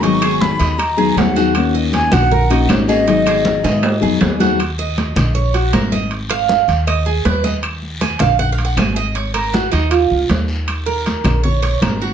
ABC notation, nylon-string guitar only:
X:1
M:4/4
L:1/8
Q:1/4=158
K:Ebm
V:1 name="Nylon-string guitar"
[E,G,CEA]4 z [G,CEA] [G,CEA] [G,CEA] | [E,B,DG]4 z [B,DG] [E,B,DG] [B,DG] | [E,G,CEA]4 z [G,CEA] [G,CEA] [G,CEA] | z8 |
z8 | z8 | z8 | z8 |]